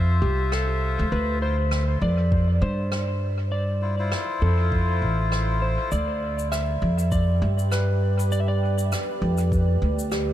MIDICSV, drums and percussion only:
0, 0, Header, 1, 2, 480
1, 0, Start_track
1, 0, Tempo, 600000
1, 895, Time_signature, 4, 2, 24, 8
1, 8265, End_track
2, 0, Start_track
2, 0, Title_t, "Drums"
2, 417, Note_on_c, 9, 37, 73
2, 497, Note_off_c, 9, 37, 0
2, 1371, Note_on_c, 9, 37, 72
2, 1451, Note_off_c, 9, 37, 0
2, 1855, Note_on_c, 9, 36, 100
2, 1935, Note_off_c, 9, 36, 0
2, 2334, Note_on_c, 9, 37, 78
2, 2414, Note_off_c, 9, 37, 0
2, 3294, Note_on_c, 9, 37, 80
2, 3374, Note_off_c, 9, 37, 0
2, 3775, Note_on_c, 9, 36, 100
2, 3855, Note_off_c, 9, 36, 0
2, 4255, Note_on_c, 9, 37, 70
2, 4335, Note_off_c, 9, 37, 0
2, 4734, Note_on_c, 9, 82, 52
2, 4814, Note_off_c, 9, 82, 0
2, 5112, Note_on_c, 9, 82, 61
2, 5192, Note_off_c, 9, 82, 0
2, 5215, Note_on_c, 9, 37, 70
2, 5221, Note_on_c, 9, 82, 54
2, 5295, Note_off_c, 9, 37, 0
2, 5301, Note_off_c, 9, 82, 0
2, 5590, Note_on_c, 9, 82, 56
2, 5670, Note_off_c, 9, 82, 0
2, 5694, Note_on_c, 9, 82, 56
2, 5695, Note_on_c, 9, 36, 101
2, 5774, Note_off_c, 9, 82, 0
2, 5775, Note_off_c, 9, 36, 0
2, 6071, Note_on_c, 9, 82, 59
2, 6151, Note_off_c, 9, 82, 0
2, 6173, Note_on_c, 9, 37, 68
2, 6176, Note_on_c, 9, 82, 53
2, 6253, Note_off_c, 9, 37, 0
2, 6256, Note_off_c, 9, 82, 0
2, 6557, Note_on_c, 9, 82, 61
2, 6637, Note_off_c, 9, 82, 0
2, 6655, Note_on_c, 9, 82, 47
2, 6735, Note_off_c, 9, 82, 0
2, 7028, Note_on_c, 9, 82, 66
2, 7108, Note_off_c, 9, 82, 0
2, 7137, Note_on_c, 9, 82, 57
2, 7138, Note_on_c, 9, 37, 74
2, 7217, Note_off_c, 9, 82, 0
2, 7218, Note_off_c, 9, 37, 0
2, 7501, Note_on_c, 9, 82, 56
2, 7581, Note_off_c, 9, 82, 0
2, 7614, Note_on_c, 9, 36, 97
2, 7620, Note_on_c, 9, 82, 51
2, 7694, Note_off_c, 9, 36, 0
2, 7700, Note_off_c, 9, 82, 0
2, 7992, Note_on_c, 9, 82, 67
2, 8072, Note_off_c, 9, 82, 0
2, 8092, Note_on_c, 9, 82, 47
2, 8093, Note_on_c, 9, 37, 65
2, 8172, Note_off_c, 9, 82, 0
2, 8173, Note_off_c, 9, 37, 0
2, 8265, End_track
0, 0, End_of_file